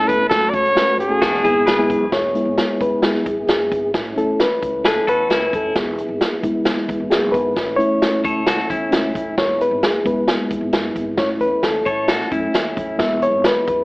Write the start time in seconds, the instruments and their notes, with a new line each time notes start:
Already playing: reed electric piano A3 C#4 E4, tonewheel organ A3 C#4 E4 A4
0.00 reed electric piano A4
0.08 upright bass E1, trumpet B4, kick, closed hi-hat
0.30 upright bass F#1, reed electric piano A3 C#4 F#4 A4, tonewheel organ F#4, trumpet A4, kick, snare, closed hi-hat
0.49 trumpet D5
0.54 upright bass C#2, trumpet C#5, kick, closed hi-hat
0.65 closed hi-hat
0.75 reed electric piano A3 C#4 F#4 B4, snare, closed hi-hat
0.87 muted upright bass stroke
0.98 upright bass F#1, trumpet G#4, closed hi-hat
1.09 reed electric piano A3 C#4 F#4 A4
1.21 upright bass E1, tonewheel organ G#3 B3 E4 G#4, clean electric guitar D4 F#4, kick, snare, closed hi-hat
1.34 snare
1.43 upright bass G#1, reed electric piano G#3 B3 E4 G#4, clean electric guitar E4 G#4, kick, closed hi-hat
1.66 upright bass G#1, clean electric guitar G#4 B4, reed electric piano B5, snare, closed hi-hat
1.77 reed electric piano G#3 B3 E4 G#4
1.89 upright bass F#1, kick, closed hi-hat
2.11 upright bass E1, tonewheel organ G#3 B3 E4 G#4, reed electric piano C#5, kick, snare, closed hi-hat
2.34 reed electric piano G#3 B3 E4, closed hi-hat
2.45 upright bass G#1
2.58 snare, closed hi-hat
2.69 muted upright bass stroke
2.80 upright bass F#1, reed electric piano B4, kick, closed hi-hat
3.02 reed electric piano G#3 B3 E4 G#4, snare, closed hi-hat
3.15 snare
3.26 upright bass E1, kick, closed hi-hat
3.37 upright bass G#1
3.47 upright bass F#1, reed electric piano G#4, snare, closed hi-hat
3.71 upright bass G#1, kick, closed hi-hat
3.93 upright bass A1, tonewheel organ E3 A3 C#4, kick, snare, closed hi-hat
4.16 upright bass E2, reed electric piano A3 C#4 E4 A4, closed hi-hat
4.40 reed electric piano B4, snare, closed hi-hat
4.51 muted upright bass stroke
4.62 upright bass C#2, kick, closed hi-hat
4.85 clean electric guitar G#4 B4, reed electric piano A4, snare, closed hi-hat
5.07 upright bass E2, clean electric guitar F#4 A4, reed electric piano B4, kick, closed hi-hat
5.29 upright bass C#2, clean electric guitar C#4 E4, snare, closed hi-hat
5.47 reed electric piano B4
5.53 upright bass F#1, reed electric piano A4, kick, closed hi-hat
5.75 upright bass E1, tonewheel organ G#3 B3 E4, reed electric piano G#4, kick, snare, closed hi-hat
5.98 closed hi-hat
6.08 upright bass G#1
6.21 snare, closed hi-hat
6.31 muted upright bass stroke
6.43 upright bass F#1, reed electric piano G#3 B3 E4, kick, closed hi-hat
6.65 snare, closed hi-hat
6.78 snare
6.88 upright bass E1, kick, closed hi-hat
7.00 upright bass G#1
7.10 upright bass F#1, reed electric piano G#4, snare, closed hi-hat
7.32 upright bass G#1, reed electric piano B4, kick, closed hi-hat
7.55 upright bass A1, tonewheel organ A3 C#4 E4, kick, snare, closed hi-hat
7.76 upright bass E2, reed electric piano A3 C#4 E4 C#5, closed hi-hat
8.02 snare, closed hi-hat
8.12 muted upright bass stroke
8.24 upright bass C#2, clean electric guitar A4 C#5, kick, closed hi-hat
8.46 clean electric guitar F#4 A4, snare, closed hi-hat
8.59 snare
8.70 upright bass E2, clean electric guitar C#4 E4, kick, closed hi-hat
8.91 upright bass C#2, reed electric piano A3 C#4 E4, snare, closed hi-hat
9.15 upright bass F#1, kick, closed hi-hat
9.37 upright bass E1, tonewheel organ G#3 B3, reed electric piano C#5, kick, snare, closed hi-hat
9.61 reed electric piano B4, closed hi-hat
9.71 upright bass G#1
9.83 reed electric piano G#4, snare, closed hi-hat
9.93 muted upright bass stroke
10.04 upright bass F#1, reed electric piano G#3 B3 E4 B4, kick, closed hi-hat
10.28 snare, closed hi-hat
10.50 upright bass E1, kick, closed hi-hat
10.61 upright bass G#1
10.73 upright bass F#1, snare, closed hi-hat
10.95 upright bass G#1, kick, closed hi-hat
11.17 reed electric piano A3 C#4 E4 C#5, tonewheel organ A3 C#4 E4, kick, snare, closed hi-hat
11.40 upright bass E2, reed electric piano B4, closed hi-hat
11.62 upright bass E2, reed electric piano A4, snare, closed hi-hat
11.86 upright bass A2, clean electric guitar A4 C#5, reed electric piano C#5, kick, closed hi-hat
12.08 clean electric guitar F#4 A4, snare, closed hi-hat
12.20 snare
12.31 upright bass F#2, reed electric piano A3 C#4 E4, clean electric guitar C#4 E4, kick, closed hi-hat
12.53 upright bass E2, snare, closed hi-hat
12.77 upright bass F#1, kick, closed hi-hat
12.98 upright bass E1, reed electric piano G#3 B3 E4 E5, tonewheel organ G#3 B3, kick, snare, closed hi-hat
13.22 reed electric piano C#5, closed hi-hat
13.32 upright bass G#1
13.44 reed electric piano B4, snare, closed hi-hat
13.55 muted upright bass stroke
13.67 upright bass F#1, reed electric piano B4, kick, closed hi-hat